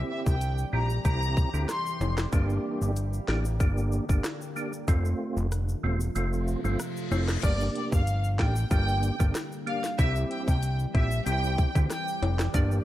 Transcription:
Already playing: E3 G3 C4 E4 G4
0.09 E5
0.26 C2 G5, kick, shaker
0.41 closed hi-hat, shaker
0.58 shaker
0.73 A#1 C4 E4 G4 A#5
0.90 shaker
1.05 C2 C4 E4 G4 A#5, kick, closed hi-hat, shaker
1.22 shaker
1.37 kick, shaker
1.54 D2 C4 E4 G4, shaker
1.69 C6, cross-stick, snare, closed hi-hat, shaker
1.86 shaker
2.01 F1, high timbale, shaker
2.18 cross-stick, snare, shaker
2.32 G1 D3 A#3 D4 G4, kick, closed hi-hat, shaker
2.50 shaker
2.82 G1, shaker
2.96 closed hi-hat, shaker
3.13 shaker
3.28 A1 A#3 D4 G4, cross-stick, snare
3.45 shaker
3.60 G1 A#3 D4 G4, kick, closed hi-hat, shaker
3.78 shaker
3.92 shaker
4.09 G1 A#3 D4 G4, kick, shaker
4.24 cross-stick, snare, closed hi-hat, shaker
4.42 shaker
4.56 A#3 D4 G4, shaker
4.73 shaker
4.88 F1 C3 F3 A3 C4 F4, kick, closed hi-hat, shaker
5.05 shaker
5.37 F1, shaker
5.52 cross-stick, closed hi-hat, shaker
5.69 shaker
5.83 E1 A3 C4 F4
6.00 shaker
6.15 F1 A3 C4 F4, closed hi-hat, reverse cymbal, shaker
6.33 shaker
6.48 shaker
6.64 G1 A3 C4 F4, shaker
6.79 cross-stick, closed hi-hat, shaker
6.97 shaker
7.11 F1 A3 C4 F4, high timbale, shaker
7.28 cross-stick, snare, shaker
7.43 G1 D3 G3 A#3 D4 G4 D5, kick, closed hi-hat, crash, shaker
7.60 shaker
7.75 D5, closed hi-hat
7.92 G1 F5, kick, shaker
8.07 closed hi-hat, shaker
8.24 shaker
8.39 A1 A#3 D4 G4 G5, kick, cross-stick, snare, closed hi-hat
8.56 shaker
8.71 G1 A#3 D4 G4 G5, kick, closed hi-hat, shaker
8.88 shaker
9.03 closed hi-hat, shaker
9.20 G1 A#3 D4 G4, kick, shaker
9.35 cross-stick, snare, closed hi-hat, shaker
9.52 shaker
9.67 A#3 D4 G4 F5, closed hi-hat
9.84 snare, shaker
9.98 C2 E3 C4 E4 G4 E5, kick, closed hi-hat, shaker
10.16 shaker
10.31 G5, closed hi-hat
10.48 C2 G5, kick, shaker
10.63 closed hi-hat, shaker
10.79 shaker
10.94 A#1 C4 E4 G4 E5, kick, closed hi-hat
11.11 shaker
11.26 C2 C4 E4 G4 G5, closed hi-hat, shaker
11.44 shaker
11.58 kick, closed hi-hat, shaker
11.75 D2 C4 E4 G4, kick, shaker
11.90 G5, cross-stick, snare, closed hi-hat, shaker
12.08 shaker
12.22 F1, closed hi-hat, high timbale
12.39 cross-stick, snare, shaker
12.54 G1 D3 A#3 D4 G4 D5, kick, closed hi-hat, shaker
12.71 shaker

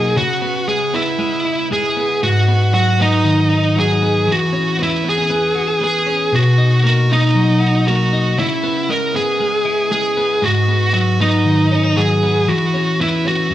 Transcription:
Already playing: B2 F#3 A#3 D#4 F#4 G#4
0.17 C#3 F#4
0.42 B3
0.68 G#3 G#4
0.94 B3 E4
1.19 G#3
1.45 E4
1.71 G#3 G#4
1.97 B3
2.23 G#2 F#4
2.48 B3
2.73 F#3 F#4
2.99 B3 D#4
3.24 D#3
3.50 D#4
3.76 F#3 G#4
4.02 B3
4.27 E3
4.32 F#4
4.53 C#4
4.79 B3 E4
5.04 B3
5.09 G#4
5.18 C#4
5.30 B3
5.55 F#4
5.67 G#4
5.81 B3 G#4
6.06 C#4
6.32 B2 F#4
6.58 D#4
6.84 A#3 F#4
7.09 D#4
7.35 F#3
7.60 F#4
7.87 A#3 F#4
8.13 D#4
8.38 C#3 E4
8.63 B3
8.89 G#3 A#4
9.14 B3 G#4
9.40 G#3
9.65 E4
9.91 G#3 G#4
10.17 B3
10.42 G#2 F#4
10.68 B3
10.94 F#3 F#4
11.20 B3 D#4
11.45 D#3
11.71 C#4
11.84 D#4
11.97 F#3 G#4
12.23 B3
12.48 E3 F#4
12.74 C#4
13.00 B3 E4
13.25 C#4 F#4
13.50 F#2

